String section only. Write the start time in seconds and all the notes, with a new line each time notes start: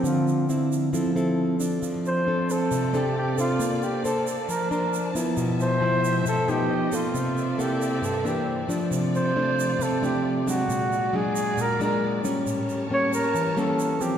1.82 A3 F4 D5
3.59 A#3 C5 A5
5.37 A3 G4 E5
6.69 C#5 D#5
7.13 A#3 A4 C5 D5 E5
8.47 D5
8.91 C3 A3 F4
10.69 F#4 G#4 D5
12.45 G4 C#5 A5